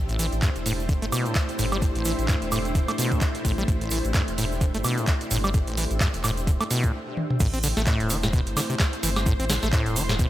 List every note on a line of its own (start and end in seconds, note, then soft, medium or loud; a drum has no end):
0.00 0.29 A1 loud
0.00 6.90 A3 medium
0.00 6.94 D4 medium
0.00 6.90 E4 medium
0.00 6.94 G4 medium
0.00 6.90 C5 medium
0.00 6.94 C5 medium
0.00 6.94 E5 medium
0.09 0.18 A1 medium
0.09 closed hi-hat soft
0.09 shaker soft
0.19 0.27 E3 medium
0.19 open hi-hat loud
0.19 shaker medium
0.32 0.41 A1 medium
0.32 closed hi-hat soft
0.32 shaker soft
0.42 0.50 G2 loud
0.42 kick loud
0.42 clap loud
0.42 closed hi-hat medium
0.42 shaker soft
0.56 0.99 E1 medium
0.56 closed hi-hat soft
0.56 shaker soft
0.66 0.73 A2 loud
0.66 open hi-hat medium
0.66 shaker medium
0.80 shaker soft
0.89 0.93 D3 medium
0.89 kick loud
0.89 closed hi-hat medium
0.89 shaker medium
1.02 1.11 G1 medium
1.02 1.06 A3 loud
1.02 closed hi-hat soft
1.02 shaker soft
1.12 1.27 B2 loud
1.12 open hi-hat loud
1.12 high woodblock medium
1.12 shaker medium
1.26 1.34 A2 medium
1.26 closed hi-hat soft
1.26 shaker soft
1.35 kick loud
1.35 clap loud
1.35 closed hi-hat medium
1.35 shaker soft
1.49 closed hi-hat soft
1.49 shaker soft
1.59 1.92 G1 medium
1.59 1.66 A2 loud
1.59 open hi-hat medium
1.59 shaker medium
1.72 1.78 G3 medium
1.72 high woodblock medium
1.72 shaker soft
1.82 1.87 A2 medium
1.82 kick loud
1.82 closed hi-hat medium
1.82 shaker soft
1.95 2.14 A1 medium
1.95 2.04 A1 medium
1.95 closed hi-hat soft
1.95 shaker soft
2.05 2.13 E3 medium
2.05 open hi-hat loud
2.05 shaker medium
2.19 2.27 A1 medium
2.19 closed hi-hat soft
2.19 shaker soft
2.28 2.36 G2 loud
2.28 kick loud
2.28 clap loud
2.28 closed hi-hat medium
2.28 shaker soft
2.42 2.85 E1 medium
2.42 closed hi-hat soft
2.42 shaker soft
2.51 2.59 A2 loud
2.51 open hi-hat medium
2.51 high woodblock medium
2.51 shaker medium
2.65 closed hi-hat soft
2.65 shaker soft
2.75 2.80 D3 medium
2.75 kick loud
2.75 closed hi-hat medium
2.75 shaker soft
2.88 2.92 A3 loud
2.88 closed hi-hat medium
2.88 high woodblock medium
2.88 shaker soft
2.98 3.13 B2 loud
2.98 open hi-hat loud
2.98 shaker medium
3.12 3.20 A2 loud
3.12 kick medium
3.12 closed hi-hat soft
3.12 shaker soft
3.21 kick loud
3.21 clap loud
3.21 closed hi-hat medium
3.21 shaker soft
3.35 closed hi-hat medium
3.35 shaker soft
3.45 3.65 A1 loud
3.45 3.52 A2 loud
3.45 kick medium
3.45 open hi-hat medium
3.45 shaker medium
3.58 3.64 G3 loud
3.58 shaker soft
3.68 4.01 A1 loud
3.68 3.73 A2 medium
3.68 kick loud
3.68 closed hi-hat medium
3.68 shaker soft
3.81 3.90 A1 medium
3.81 closed hi-hat medium
3.81 shaker soft
3.90 3.99 E3 medium
3.90 open hi-hat loud
3.90 shaker medium
4.05 4.13 A1 medium
4.05 closed hi-hat soft
4.05 shaker soft
4.14 4.22 G2 loud
4.14 kick loud
4.14 clap loud
4.14 closed hi-hat medium
4.14 shaker soft
4.28 4.71 E1 medium
4.28 closed hi-hat medium
4.28 shaker soft
4.38 4.45 A2 loud
4.38 open hi-hat medium
4.38 shaker medium
4.52 shaker soft
4.61 4.66 D3 medium
4.61 kick loud
4.61 closed hi-hat medium
4.61 shaker soft
4.74 4.83 G1 loud
4.74 4.78 A3 loud
4.74 closed hi-hat medium
4.74 shaker soft
4.84 4.99 B2 loud
4.84 open hi-hat loud
4.84 high woodblock medium
4.84 shaker medium
4.98 5.06 A2 medium
4.98 closed hi-hat soft
4.98 shaker soft
5.07 kick loud
5.07 clap loud
5.07 closed hi-hat medium
5.07 shaker soft
5.21 closed hi-hat medium
5.21 shaker soft
5.31 5.64 G1 medium
5.31 5.38 A2 loud
5.31 open hi-hat medium
5.31 shaker medium
5.44 5.50 G3 loud
5.44 high woodblock medium
5.44 shaker soft
5.54 5.59 A2 medium
5.54 kick loud
5.54 closed hi-hat medium
5.54 shaker soft
5.67 5.86 A1 medium
5.67 5.76 A1 medium
5.67 closed hi-hat medium
5.67 shaker soft
5.77 5.85 E3 medium
5.77 open hi-hat loud
5.77 shaker medium
5.91 5.99 A1 medium
5.91 closed hi-hat soft
5.91 shaker soft
6.00 6.08 G2 loud
6.00 kick loud
6.00 clap loud
6.00 closed hi-hat medium
6.00 shaker soft
6.14 6.57 E1 medium
6.14 closed hi-hat medium
6.14 shaker soft
6.24 6.31 A2 loud
6.24 clap soft
6.24 open hi-hat medium
6.24 high woodblock medium
6.24 shaker medium
6.37 closed hi-hat soft
6.37 shaker soft
6.47 6.52 D3 medium
6.47 kick loud
6.47 closed hi-hat medium
6.47 shaker soft
6.60 6.64 A3 loud
6.60 closed hi-hat medium
6.60 high woodblock medium
6.60 shaker soft
6.71 6.85 B2 loud
6.71 open hi-hat loud
6.71 shaker medium
6.83 6.92 A2 loud
6.83 kick medium
6.83 closed hi-hat soft
6.83 shaker soft
7.17 high tom medium
7.30 mid tom medium
7.40 7.73 A1 loud
7.40 7.48 A2 loud
7.40 10.30 A3 medium
7.40 10.30 E4 medium
7.40 10.30 C5 medium
7.40 kick loud
7.40 closed hi-hat medium
7.40 crash loud
7.40 shaker soft
7.54 7.59 C4 medium
7.54 closed hi-hat medium
7.54 shaker soft
7.63 7.68 D3 loud
7.63 open hi-hat loud
7.63 shaker medium
7.77 7.85 A1 medium
7.77 7.82 A3 loud
7.77 snare soft
7.77 closed hi-hat soft
7.77 shaker soft
7.86 8.12 A2 loud
7.86 kick loud
7.86 clap loud
7.86 closed hi-hat medium
7.86 shaker soft
8.00 8.43 E1 medium
8.00 closed hi-hat medium
8.00 shaker soft
8.09 8.17 E3 medium
8.09 open hi-hat loud
8.09 shaker medium
8.23 8.29 A2 loud
8.23 snare medium
8.23 shaker soft
8.33 8.41 B2 loud
8.33 kick loud
8.33 closed hi-hat medium
8.33 shaker medium
8.46 8.55 G1 loud
8.46 closed hi-hat medium
8.46 shaker soft
8.57 8.61 D3 loud
8.57 snare soft
8.57 open hi-hat loud
8.57 high woodblock medium
8.57 shaker loud
8.70 8.75 C3 medium
8.70 closed hi-hat soft
8.70 shaker soft
8.80 kick loud
8.80 snare medium
8.80 clap loud
8.80 closed hi-hat medium
8.80 shaker medium
8.93 closed hi-hat medium
8.93 shaker soft
9.03 9.36 G1 medium
9.03 9.10 E3 medium
9.03 open hi-hat loud
9.03 shaker medium
9.16 snare medium
9.16 high woodblock medium
9.16 shaker soft
9.26 9.34 A2 loud
9.26 kick loud
9.26 closed hi-hat medium
9.26 shaker medium
9.39 9.58 A1 medium
9.39 9.45 C4 medium
9.39 closed hi-hat medium
9.39 shaker soft
9.50 9.54 D3 loud
9.50 snare medium
9.50 open hi-hat loud
9.50 shaker medium
9.62 9.71 A1 medium
9.62 9.68 A3 loud
9.62 snare soft
9.62 closed hi-hat soft
9.62 shaker soft
9.73 9.98 A2 loud
9.73 kick loud
9.73 clap loud
9.73 closed hi-hat medium
9.73 shaker medium
9.86 10.29 E1 medium
9.86 closed hi-hat medium
9.86 shaker soft
9.96 10.03 E3 medium
9.96 open hi-hat loud
9.96 shaker medium
10.09 10.15 A2 loud
10.09 snare medium
10.09 shaker soft
10.19 10.27 B2 loud
10.19 kick loud
10.19 closed hi-hat medium
10.19 shaker medium